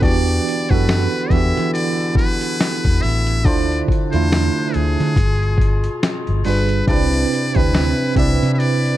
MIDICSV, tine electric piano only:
0, 0, Header, 1, 2, 480
1, 0, Start_track
1, 0, Key_signature, 1, "minor"
1, 0, Tempo, 857143
1, 12, Time_signature, 4, 2, 24, 8
1, 5024, End_track
2, 0, Start_track
2, 0, Title_t, "Tine electric piano"
2, 0, Program_c, 0, 4
2, 0, Control_c, 0, 64, 127
2, 8, Note_on_c, 0, 52, 94
2, 11, Note_on_c, 0, 59, 89
2, 15, Note_on_c, 0, 62, 78
2, 19, Control_c, 0, 64, 0
2, 21, Note_on_c, 0, 66, 87
2, 29, Note_on_c, 0, 67, 96
2, 128, Control_c, 0, 64, 127
2, 288, Note_off_c, 0, 52, 0
2, 289, Note_off_c, 0, 59, 0
2, 292, Note_off_c, 0, 62, 0
2, 294, Note_off_c, 0, 66, 0
2, 298, Note_off_c, 0, 67, 0
2, 391, Note_on_c, 0, 52, 75
2, 394, Note_on_c, 0, 59, 63
2, 400, Note_on_c, 0, 62, 69
2, 404, Note_on_c, 0, 66, 71
2, 412, Note_on_c, 0, 69, 85
2, 659, Note_off_c, 0, 52, 0
2, 660, Note_off_c, 0, 59, 0
2, 663, Note_off_c, 0, 62, 0
2, 665, Note_off_c, 0, 66, 0
2, 669, Note_off_c, 0, 69, 0
2, 733, Note_on_c, 0, 52, 69
2, 736, Note_on_c, 0, 59, 66
2, 743, Note_on_c, 0, 62, 63
2, 748, Note_on_c, 0, 66, 58
2, 753, Note_on_c, 0, 67, 76
2, 1462, Note_off_c, 0, 52, 0
2, 1464, Note_off_c, 0, 59, 0
2, 1467, Note_off_c, 0, 62, 0
2, 1470, Note_off_c, 0, 66, 0
2, 1472, Note_off_c, 0, 67, 0
2, 1928, Note_on_c, 0, 50, 99
2, 1932, Note_on_c, 0, 62, 88
2, 1939, Control_c, 0, 64, 0
2, 1939, Note_on_c, 0, 64, 92
2, 1944, Note_on_c, 0, 65, 89
2, 1947, Note_on_c, 0, 72, 105
2, 2045, Control_c, 0, 64, 127
2, 2208, Note_off_c, 0, 50, 0
2, 2210, Note_off_c, 0, 62, 0
2, 2214, Note_off_c, 0, 64, 0
2, 2216, Note_off_c, 0, 65, 0
2, 2218, Note_off_c, 0, 72, 0
2, 2308, Note_on_c, 0, 50, 71
2, 2315, Note_on_c, 0, 62, 65
2, 2319, Note_on_c, 0, 64, 75
2, 2323, Note_on_c, 0, 65, 68
2, 2329, Note_on_c, 0, 57, 85
2, 2891, Note_off_c, 0, 50, 0
2, 2895, Note_off_c, 0, 62, 0
2, 2897, Note_off_c, 0, 64, 0
2, 2899, Note_off_c, 0, 65, 0
2, 2900, Control_c, 0, 64, 0
2, 2902, Note_off_c, 0, 57, 0
2, 2984, Control_c, 0, 64, 127
2, 3613, Note_on_c, 0, 55, 73
2, 3618, Note_on_c, 0, 62, 70
2, 3623, Note_on_c, 0, 65, 67
2, 3628, Note_on_c, 0, 68, 70
2, 3636, Note_on_c, 0, 71, 87
2, 3803, Note_off_c, 0, 55, 0
2, 3806, Note_off_c, 0, 62, 0
2, 3808, Note_off_c, 0, 65, 0
2, 3811, Note_off_c, 0, 68, 0
2, 3815, Note_off_c, 0, 71, 0
2, 3848, Note_on_c, 0, 48, 102
2, 3856, Note_on_c, 0, 60, 87
2, 3860, Control_c, 0, 64, 0
2, 3860, Note_on_c, 0, 62, 91
2, 3865, Note_on_c, 0, 64, 82
2, 3869, Note_on_c, 0, 71, 114
2, 3951, Control_c, 0, 64, 127
2, 4128, Note_off_c, 0, 48, 0
2, 4132, Note_off_c, 0, 60, 0
2, 4134, Note_off_c, 0, 62, 0
2, 4136, Note_off_c, 0, 64, 0
2, 4139, Note_off_c, 0, 71, 0
2, 4226, Note_on_c, 0, 48, 81
2, 4233, Note_on_c, 0, 60, 74
2, 4237, Note_on_c, 0, 62, 65
2, 4241, Note_on_c, 0, 64, 71
2, 4247, Note_on_c, 0, 71, 83
2, 4496, Note_off_c, 0, 48, 0
2, 4499, Note_off_c, 0, 60, 0
2, 4502, Note_off_c, 0, 62, 0
2, 4504, Note_off_c, 0, 64, 0
2, 4507, Note_off_c, 0, 71, 0
2, 4567, Note_on_c, 0, 48, 68
2, 4572, Note_on_c, 0, 60, 66
2, 4577, Note_on_c, 0, 62, 65
2, 4581, Note_on_c, 0, 64, 67
2, 4587, Note_on_c, 0, 74, 85
2, 5024, Note_off_c, 0, 48, 0
2, 5024, Note_off_c, 0, 60, 0
2, 5024, Note_off_c, 0, 62, 0
2, 5024, Note_off_c, 0, 64, 0
2, 5024, Note_off_c, 0, 74, 0
2, 5024, End_track
0, 0, End_of_file